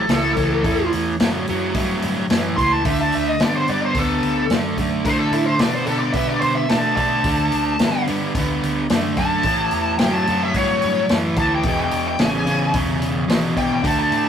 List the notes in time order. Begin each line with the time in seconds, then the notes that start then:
Already playing: A4
0.09 C#2 A2 E3, snare, open hi-hat
0.37 C#2 A2 E3, kick, open hi-hat
0.64 E2 A2 E3, kick, open hi-hat
0.93 E2, open hi-hat
1.20 F#2 A2 F#3, snare, open hi-hat
1.47 F#2 A2 F#3, open hi-hat
1.74 G2 A2 F#3, kick, open hi-hat
2.02 G2, open hi-hat
2.30 F#2 A2 E3, snare, open hi-hat
2.56 C#2 A2 E3 C6, kick, open hi-hat
2.72 A5
2.85 D2 D3 A3 E5, kick, open hi-hat
3.01 A5
3.12 D2 E5, open hi-hat
3.28 D#5
3.40 G2 D3 B3 D5, snare, open hi-hat
3.56 C5
3.68 G2 D3 B3 D5, open hi-hat
3.85 C5
3.95 D2 D3 B3, kick, open hi-hat
3.99 A4
4.22 D2, open hi-hat
4.50 F#2 D3 A3, snare, open hi-hat
4.77 F#2 D3 A3, kick, open hi-hat
5.05 A2 D3 A3 C5, kick, open hi-hat
5.19 A4
5.31 A2 E4, open hi-hat
5.46 C5
5.59 B2 D3 B3 D5, snare, open hi-hat
5.74 C5
5.86 B2 D3 B3 A4, open hi-hat
5.99 D5
6.12 B2 D3 B3 E5, kick, open hi-hat
6.27 D5
6.41 B2 C5, open hi-hat
6.55 E5
6.69 B2 D3 A3 A5, snare, open hi-hat
6.96 B2 D3 A3 A5, kick, open hi-hat
7.24 D2 D3 A3, kick, open hi-hat
7.52 D2, open hi-hat
7.79 G2 D3 B3, snare, open hi-hat
8.07 G2 D3 B3, open hi-hat
8.35 D2 D3 B3, kick, open hi-hat
8.63 D2, open hi-hat
8.90 F#2 D3 A3, snare, open hi-hat
9.17 F#2 D3 A3 A5, kick, open hi-hat
9.43 A1 A2 E3, kick, open hi-hat
9.71 E2, open hi-hat
9.99 F#2 A2 F#3 G5, snare, open hi-hat
10.13 A5
10.27 F#2 A2 F#3, open hi-hat
10.43 E5
10.54 G2 A2 F#3 C#5, kick, open hi-hat
10.82 G2, open hi-hat
11.09 F#2 A2 E3, snare, open hi-hat
11.36 D2 A2 E3 A5, kick, open hi-hat
11.55 G5
11.63 E1 E2 B2, kick, open hi-hat
11.68 G5
11.82 G5
11.91 E1 G5, open hi-hat
12.08 G5
12.19 A1 E2 C#3 G#5, snare, open hi-hat
12.45 A1 E2 C#3, open hi-hat
12.74 E1 E2 C#3, kick, open hi-hat
13.00 E1, open hi-hat
13.28 G#1 E2 B2, snare, open hi-hat
13.56 G#1 E2 B2 G5, kick, open hi-hat
13.73 G5
13.84 D2 D3 A3 A5, kick, open hi-hat
13.99 A5
14.12 A2 A5, open hi-hat
14.25 A5